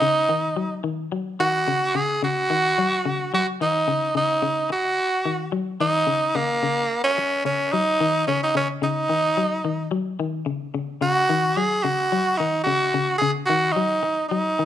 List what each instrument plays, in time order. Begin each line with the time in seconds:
Already playing: tenor saxophone D#4
0.02 clean electric guitar C#3
0.29 clean electric guitar D#3
0.56 clean electric guitar F#3
0.84 clean electric guitar D#3
1.12 clean electric guitar F#3
1.40 clean electric guitar D#3, tenor saxophone F#4
1.68 clean electric guitar C#3
1.95 clean electric guitar C#3, tenor saxophone G#4
2.23 clean electric guitar C#3, tenor saxophone F#4
2.50 clean electric guitar D#3
2.78 clean electric guitar F#3
3.06 clean electric guitar C#3
3.34 clean electric guitar F#3, tenor saxophone F#4
3.61 clean electric guitar D#3, tenor saxophone D#4
3.88 clean electric guitar C#3
4.15 clean electric guitar C#3, tenor saxophone D#4
4.42 clean electric guitar C#3
4.70 tenor saxophone F#4, muted clean electric guitar stroke
5.25 clean electric guitar D#3
5.52 clean electric guitar F#3
5.80 clean electric guitar D#3, tenor saxophone D#4
6.07 clean electric guitar C#3
6.35 clean electric guitar C#3, tenor saxophone A#3
6.63 clean electric guitar C#3
7.04 tenor saxophone C#4
7.18 muted clean electric guitar stroke
7.45 clean electric guitar C#3, tenor saxophone C#4
7.72 clean electric guitar F#3, tenor saxophone D#4
8.01 clean electric guitar D#3
8.27 clean electric guitar C#3, tenor saxophone C#4
8.43 tenor saxophone D#4
8.55 clean electric guitar C#3, tenor saxophone C#4
8.82 clean electric guitar C#3, tenor saxophone D#4
9.10 clean electric guitar D#3
9.37 clean electric guitar F#3
9.65 clean electric guitar D#3
9.91 clean electric guitar F#3
10.20 clean electric guitar D#3
10.46 clean electric guitar C#3
10.74 clean electric guitar C#3
11.01 clean electric guitar C#3, tenor saxophone F#4
11.30 clean electric guitar D#3
11.57 clean electric guitar F#3, tenor saxophone G#4
11.83 clean electric guitar C#3, tenor saxophone F#4
12.12 clean electric guitar F#3
12.37 clean electric guitar D#3, tenor saxophone D#4
12.64 clean electric guitar C#3, tenor saxophone F#4
12.94 clean electric guitar C#3
13.18 clean electric guitar C#3, tenor saxophone G#4
13.46 clean electric guitar D#3, tenor saxophone F#4
13.72 tenor saxophone D#4
13.76 clean electric guitar F#3
14.03 muted clean electric guitar stroke
14.28 clean electric guitar F#3, tenor saxophone D#4
14.59 clean electric guitar D#3